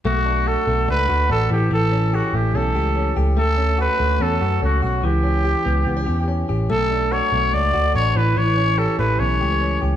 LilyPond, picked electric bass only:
\new Staff \with { instrumentName = "Picked electric bass" } { \clef bass \time 4/4 \key b \minor \tempo 4 = 144 b,,4~ b,,16 r16 b,,8 cis,8 d,8 a,,8 a,,8 | a,,4~ a,,16 r16 a,,8 b,,8 cis,4 cis,8 | d,4~ d,16 r16 d,8 e,8 fis,8 cis,8 b,,8 | cis,4~ cis,16 r16 cis,8 cis,8 e,4 a,,8 |
b,,4~ b,,16 r16 b,,8 cis,8 d,8 a,,8 a,,8 | a,,4~ a,,16 r16 a,,8 b,,8 cis,4 cis,8 | }